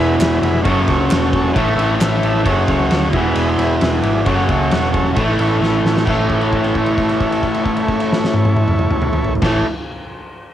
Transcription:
Already playing: picked electric bass E1, overdriven electric guitar E2 B2 E3, transistor combo organ E4
0.00 transistor combo organ G#4 B4
0.19 picked electric bass E1, transistor combo organ E4 G#4 B4, snare, clap, ride
0.42 picked electric bass F1, transistor combo organ E4 G#4 B4, ride
0.63 picked electric bass F#1, overdriven electric guitar F#2 C#3, transistor combo organ F#4 A4 C#5, kick, ride
0.68 overdriven electric guitar F#3
0.87 picked electric bass C#2, transistor combo organ F#4 A4 C#5, kick, ride
1.10 picked electric bass E1, transistor combo organ F#4 A4 C#5, snare, clap, ride
1.33 transistor combo organ F#4 A4 C#5, kick, ride
1.53 picked electric bass A1, overdriven electric guitar A2 E3, transistor combo organ E4 A4, kick, ride
1.58 overdriven electric guitar A3, transistor combo organ C#5
1.76 picked electric bass A1, transistor combo organ E4 A4 C#5, ride
2.00 picked electric bass A1, transistor combo organ E4 A4 E5, snare, clap, ride
2.23 picked electric bass A1, transistor combo organ E4 A4 E5, ride
2.44 picked electric bass F#1, overdriven electric guitar F#2 C#3, transistor combo organ F#4 A4 C#5, kick, ride
2.49 overdriven electric guitar F#3
2.68 picked electric bass C#2, transistor combo organ F#4 A4 C#5, kick, ride
2.89 picked electric bass D2, transistor combo organ F#4 A4 C#5, snare, ride
3.12 picked electric bass E1, overdriven electric guitar E2 B2, transistor combo organ E4 G#4 B4, kick, ride
3.17 overdriven electric guitar E3
3.35 picked electric bass E1, ride
3.57 picked electric bass E1, transistor combo organ E4 G#4 B4, ride
3.80 picked electric bass E1, transistor combo organ E4 G#4 B4, snare, ride
4.02 picked electric bass G#1, transistor combo organ E4 G#4 D5, ride
4.25 picked electric bass F#1, overdriven electric guitar F#2 C#3, transistor combo organ F#4 A4 C#5, kick, ride
4.29 overdriven electric guitar F#3
4.49 picked electric bass C#2, transistor combo organ F#4 A4 C#5, kick, ride
4.70 picked electric bass E1, transistor combo organ F#4 A4 C#5, snare, ride
4.91 transistor combo organ F#4 A4 C#5, kick, ride
5.14 picked electric bass A1, overdriven electric guitar A2, transistor combo organ E4 A4 C#5, kick, ride
5.18 overdriven electric guitar E3 A3
5.39 picked electric bass A1, transistor combo organ E4 A4 C#5, ride
5.60 picked electric bass A1, transistor combo organ E4 A4 C#5, snare
5.84 picked electric bass A1, transistor combo organ E4 A4 C#5, snare
5.97 snare
6.06 picked electric bass A1, overdriven electric guitar A2 E3, transistor combo organ E4 A4, kick, crash
6.10 overdriven electric guitar A3, transistor combo organ C#5
6.29 kick, crash
6.41 crash
6.53 kick, crash
6.64 crash
6.75 kick, crash
6.86 crash
6.98 kick, crash
7.09 crash
7.20 kick, crash
7.32 crash
7.43 kick, crash
7.54 crash
7.65 kick, crash
7.77 crash
7.88 kick, crash
8.00 crash
8.13 snare
8.24 snare
8.34 high tom
8.45 high tom
8.57 high tom
8.68 mid tom
8.79 mid tom
8.91 mid tom
9.02 mid tom
9.13 mid tom
9.24 floor tom
9.35 floor tom
9.42 picked electric bass A1, overdriven electric guitar A2 E3 A3, transistor combo organ E4 A4 C#5, kick, snare, crash

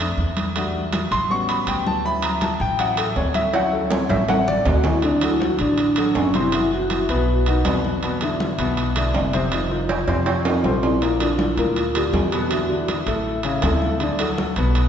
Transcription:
Already playing: upright bass F2
0.00 grand piano A3 C4 D4, high conga
0.18 upright bass E2, high conga
0.37 high conga, high timbale
0.55 grand piano G3 A3 D4 F#4, high conga, high timbale
0.75 high conga
0.93 high conga, high timbale
1.11 upright bass A1, grand piano C6, high conga, high timbale
1.30 grand piano G3 B3 C#4 F#4 C#6, high conga
1.49 grand piano B5, high conga, high timbale
1.67 upright bass D2, grand piano G5, high conga, high timbale
1.87 grand piano A5, high conga
2.05 grand piano F#3 C#4 E4 B5, high conga
2.22 grand piano A#5, high conga, high timbale
2.41 grand piano A5, high conga, high timbale
2.60 upright bass A1, grand piano G5, high conga
2.79 grand piano F#3 C#4 E4 F#5, high conga, high timbale
2.97 grand piano A4, high conga, high timbale
3.16 upright bass D2, grand piano C#5, high conga, low timbale
3.34 grand piano E5, high conga, high timbale
3.54 grand piano F#3 C#4 E4 F#5, high conga, high timbale
3.73 grand piano A4, high conga
3.90 grand piano C#5, high conga, low timbale
4.09 upright bass A1, grand piano E5, high conga, high timbale
4.28 grand piano F#5, high conga, low timbale
4.48 grand piano D5, low conga
4.65 upright bass D2, vibraphone F#4, low conga, low timbale
4.84 vibraphone E4, low conga, low timbale
5.02 grand piano D3 D4 D5, vibraphone D4, high conga, high timbale
5.21 grand piano F#3 F#4 A4, vibraphone E4, high conga, high timbale
5.40 vibraphone F#4, high conga, low timbale
5.58 upright bass A1, grand piano D3 D4 D5, vibraphone D4, high conga, high timbale
5.78 high conga, high timbale
5.96 grand piano F#3 F#4 A4, high conga, high timbale
6.15 upright bass F#1, vibraphone C#4, high conga, low timbale
6.33 grand piano C3 C4 C5, vibraphone E4, high conga, high timbale
6.52 grand piano E3 E4 F#4, high conga, high timbale
6.72 grand piano E3 E4 F#4, vibraphone F#4, high conga
6.90 high conga, high timbale, low timbale
7.09 upright bass B1, grand piano B2 B3 B4, high conga, high timbale
7.28 high conga
7.46 grand piano D#3 D#4 F#4, high conga, high timbale
7.65 upright bass E2, grand piano B2 B3 B4, high conga, high timbale, low timbale
7.85 high conga
8.03 grand piano B2 B3 B4, high conga, high timbale
8.21 grand piano D3 D4 E4, high conga, high timbale
8.40 high conga, low timbale
8.58 upright bass B1, grand piano B2 B3 B4, high conga, high timbale
8.77 high conga, high timbale
8.96 grand piano D3 D4 E4, high conga, high timbale
9.14 upright bass F1, high conga, low timbale
9.33 grand piano C3 C4 C5, high conga, high timbale
9.52 grand piano D#3 D#4 F4, high conga, high timbale
9.71 grand piano D#3 D#4 F4, high conga
9.89 high conga, high timbale
10.07 upright bass F2, grand piano C3 C4 C5, high conga, high timbale
10.26 high conga, high timbale
10.45 grand piano D#3 D#4 F4, high conga, low timbale
10.64 upright bass A#1, grand piano C3 C4 C5, vibraphone F4, high conga, low timbale
10.83 vibraphone E4, low timbale
11.02 grand piano A#2 A#3 A#4, high conga, high timbale
11.20 grand piano D3 D4 F4, vibraphone D4, high conga, high timbale
11.39 vibraphone E4, high conga, low timbale
11.57 upright bass D2, grand piano A#2 A#3 A#4, high conga, high timbale
11.76 vibraphone F4, high conga, high timbale
11.95 grand piano D3 D4 F4, vibraphone G4, high conga, high timbale
12.13 upright bass E2, high conga, low timbale
12.32 grand piano B2 B3 B4, vibraphone F#4, high timbale
12.51 grand piano D3 D4 E4, high conga, high timbale
12.70 grand piano D3 D4 E4, high conga
12.88 high conga, high timbale, low timbale
13.06 upright bass A1, grand piano A2 A3 A4, high conga, high timbale
13.26 high conga
13.43 grand piano C#3 C#4 E4, high conga, high timbale
13.62 upright bass D2, grand piano A2 A3 A4, high conga, high timbale, low timbale
13.82 high conga
14.00 grand piano D3 D4 D5, high conga, high timbale
14.19 grand piano F#3 F#4 A4, high conga, high timbale
14.38 high conga, low timbale
14.56 upright bass B1, grand piano B2 B3 B4, high conga, high timbale
14.75 high conga, high timbale

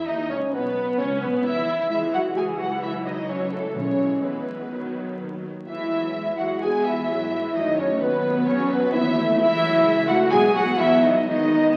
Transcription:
0.06 double bass section D#2, cello section D#3, viola section D#4, french horn section D#4, clarinet D#4, violin section D#5, flute D#5
0.29 double bass section C#2, cello section C#3, french horn section C#4, viola section C#4, clarinet C#4, violin section C#5, flute D#5
0.34 flute C#5
0.52 double bass section B1, cello section B2, viola section B3, french horn section B3, clarinet B3, violin section B4, flute B4
0.98 double bass section C#2, cello section C#3, french horn section C#4, viola section C#4, clarinet C#4, violin section C#5, flute C#5
1.21 double bass section B1, cello section B2, french horn section B3, viola section B3, clarinet B3, violin section B4, flute B4
1.45 double bass section E2, cello section E3, french horn section E4, viola section E4, clarinet E4, violin section E5, flute E5
1.91 double bass section C#2, cello section E3, viola section E3 G#3, french horn section E4, clarinet E4, violin section E5, flute E5
2.13 cello section F#3, clarinet F#4, french horn section F#4, violin section F#5, flute F#5
2.36 viola section E3, cello section G#3, clarinet G#4, french horn section G#4, violin section G#5, flute G#5
2.59 cello section F#3, clarinet F#4, french horn section F#4, violin section F#5, flute F#5
2.82 cello section E3, viola section F#3, french horn section E4, clarinet E4, flute E5, violin section E5
3.05 cello section D#3, french horn section D#4, clarinet D#4, flute D#5, violin section D#5
3.28 cello section C#3, viola section E3, clarinet C#4, french horn section C#4, violin section C#5, flute C#5
3.52 cello section A2, clarinet A3, french horn section A3, violin section A4, flute A4
3.76 double bass section B1, timpani B2, cello section C#3, viola section E3 G#3, french horn section C#4, clarinet C#4, flute C#5, violin section C#5
4.24 cello section B2, french horn section B3, clarinet B3, flute B4, violin section B4
4.71 double bass section B1, viola section D#3 F#3
5.20 double bass section D#2
5.68 double bass section E2, cello section E3, viola section E3 G#3, french horn section E4, clarinet E4, violin section E5, flute E5
5.92 viola section F#3
6.16 viola section G#3
6.38 cello section F#3, viola section G#3, clarinet F#4, french horn section F#4, violin section F#5, flute F#5
6.62 cello section G#3, viola section B3, clarinet G#4, french horn section G#4, violin section G#5, flute G#5
6.86 cello section E3, clarinet E4, french horn section E4, violin section E5, flute E5
7.09 double bass section G#2, viola section F#3 G#3
7.33 viola section E3
7.55 double bass section F#2, cello section D#3, viola section F#3 A3, french horn section D#4, clarinet D#4, violin section D#5, flute D#5
7.78 cello section C#3, clarinet C#4, french horn section C#4, violin section C#5, flute C#5
8.00 double bass section D#2, cello section B2, viola section F#3 B3, french horn section B3, clarinet B3, violin section B4, flute B4
8.46 double bass section E2, cello section C#3, clarinet C#4, french horn section C#4, violin section C#5, flute C#5
8.69 cello section B2, clarinet B3, french horn section B3, violin section B4, flute B4
8.92 double bass section D#2, cello section E3, viola section B3, clarinet E4, french horn section E4, violin section E5, flute E5
9.16 viola section A3
9.38 double bass section C#2, cello section E3, viola section E3 G#3, french horn section E4, clarinet E4, flute E5, violin section E5
9.62 viola section F#3
9.85 viola section G#3
10.08 cello section F#3, viola section A3, french horn section F#4, clarinet F#4, violin section F#5, flute F#5
10.31 double bass section B1, timpani B2, viola section E3 B3, cello section G#3, clarinet G#4, french horn section G#4, violin section G#5, flute G#5
10.54 cello section F#3, french horn section F#4, clarinet F#4, violin section F#5, flute F#5
10.78 double bass section B1, cello section E3, viola section F#3 B3, french horn section E4, clarinet E4, violin section E5, flute E5
11.03 cello section D#3, french horn section D#4, clarinet D#4, violin section D#5, flute D#5
11.27 double bass section E2, cello section D#3, viola section G#3 B3, french horn section D#4, clarinet D#4, violin section D#5, flute D#5

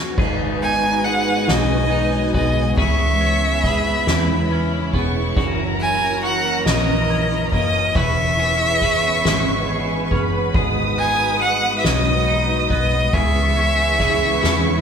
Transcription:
Already playing: string section F#2 F#3 A#3 G#4, clean electric guitar F#3 C#4 F#4 A#4
0.17 fingered electric bass G#1, clean electric guitar G#2 G#4, steel-string acoustic guitar F#3, string section G#3 D#4 F#4 B4, violin section G#5, kick, crash
0.39 steel-string acoustic guitar D#4
0.60 steel-string acoustic guitar B3, clean electric guitar D#4, violin G#5, ride
0.83 steel-string acoustic guitar D#4
1.04 steel-string acoustic guitar G#4, clean electric guitar G#4, violin F#5, ride
1.26 steel-string acoustic guitar B3
1.47 fingered electric bass B1, steel-string acoustic guitar F#3, clean electric guitar F#3, violin D#5, snare, ride
1.69 steel-string acoustic guitar D#4
1.90 steel-string acoustic guitar B3, clean electric guitar D#4, ride
2.12 steel-string acoustic guitar D#4
2.34 fingered electric bass B1, clean electric guitar B3, steel-string acoustic guitar G#4, violin D#5, kick, ride
2.56 steel-string acoustic guitar B3
2.76 fingered electric bass C#2, string section C#3 B3 E4, clean electric guitar C#3 G#4, steel-string acoustic guitar E3, violin E5, violin section C#6, kick, ride
2.99 steel-string acoustic guitar C#4
3.20 steel-string acoustic guitar B3, clean electric guitar C#4, ride
3.42 steel-string acoustic guitar C#4
3.63 steel-string acoustic guitar G#4, clean electric guitar G#4, violin section B5, kick, snare, ride
3.86 steel-string acoustic guitar B3
4.06 fingered electric bass E2, clean electric guitar E3, steel-string acoustic guitar E3, snare, ride
4.29 steel-string acoustic guitar C#4
4.50 steel-string acoustic guitar B3, clean electric guitar C#4, ride
4.72 steel-string acoustic guitar C#4
4.92 fingered electric bass E1, clean electric guitar B3, steel-string acoustic guitar G#4, violin section C#6, kick, ride
5.15 steel-string acoustic guitar B3
5.36 fingered electric bass F#1, clean electric guitar F#2 F#4, steel-string acoustic guitar E3, string section F#3 C#4 A#4, violin section A#5, kick, ride
5.58 steel-string acoustic guitar C#4
5.79 steel-string acoustic guitar A#3, clean electric guitar E4, violin G#5, ride
6.02 steel-string acoustic guitar C#4
6.23 clean electric guitar F#4, steel-string acoustic guitar F#4, violin F#5, ride
6.45 steel-string acoustic guitar A#3
6.65 fingered electric bass A#1, steel-string acoustic guitar E3, clean electric guitar E3, violin D#5, snare, ride
6.88 steel-string acoustic guitar C#4
7.09 steel-string acoustic guitar A#3, clean electric guitar E4, ride
7.31 steel-string acoustic guitar C#4
7.51 fingered electric bass F#1, clean electric guitar A#3, steel-string acoustic guitar F#4, violin D#5, violin section D#6, kick, ride
7.74 steel-string acoustic guitar A#3
7.95 fingered electric bass E1, steel-string acoustic guitar E3, string section E3 B3 B4, clean electric guitar E3 B4, violin E5, violin section C#6, kick, ride
8.17 steel-string acoustic guitar C#4
8.38 steel-string acoustic guitar B3, clean electric guitar G#4, ride
8.60 steel-string acoustic guitar C#4
8.82 steel-string acoustic guitar G#4, clean electric guitar B4, kick, snare, ride
9.04 steel-string acoustic guitar B3
9.24 fingered electric bass G#1, steel-string acoustic guitar E3, clean electric guitar G#3, snare, ride
9.47 steel-string acoustic guitar C#4
9.68 steel-string acoustic guitar B3, clean electric guitar G#4, ride
9.90 steel-string acoustic guitar C#4
10.05 violin section C#6
10.11 fingered electric bass F#1, clean electric guitar C#4, steel-string acoustic guitar G#4, violin section B5, kick
10.33 steel-string acoustic guitar B3
10.54 fingered electric bass G#1, clean electric guitar G#2 G#4, steel-string acoustic guitar F#3, string section G#3 F#4, violin section D#6, kick, ride
10.76 steel-string acoustic guitar D#4
10.97 steel-string acoustic guitar B3, clean electric guitar D#4, violin G#5, ride
11.19 steel-string acoustic guitar D#4
11.40 steel-string acoustic guitar F#4, clean electric guitar G#4, violin F#5, ride
11.61 steel-string acoustic guitar B3
11.78 violin E5
11.83 fingered electric bass B1, steel-string acoustic guitar F#3, clean electric guitar F#3, violin D#5, snare, ride
12.05 steel-string acoustic guitar D#4
12.26 steel-string acoustic guitar B3, clean electric guitar D#4, ride
12.48 steel-string acoustic guitar D#4
12.69 fingered electric bass B1, clean electric guitar B3, steel-string acoustic guitar F#4, violin D#5, kick, ride
12.91 steel-string acoustic guitar B3
13.12 fingered electric bass C#2, clean electric guitar C#3 G#4, string section C#3 B3 E4, steel-string acoustic guitar E3, violin E5, violin section C#6, kick, ride
13.35 steel-string acoustic guitar C#4
13.56 steel-string acoustic guitar B3, clean electric guitar C#4, ride
13.78 steel-string acoustic guitar C#4
13.99 steel-string acoustic guitar G#4, clean electric guitar G#4, kick, snare, ride
14.21 steel-string acoustic guitar B3
14.43 fingered electric bass E2, clean electric guitar E3, steel-string acoustic guitar E3, snare, ride
14.64 steel-string acoustic guitar C#4

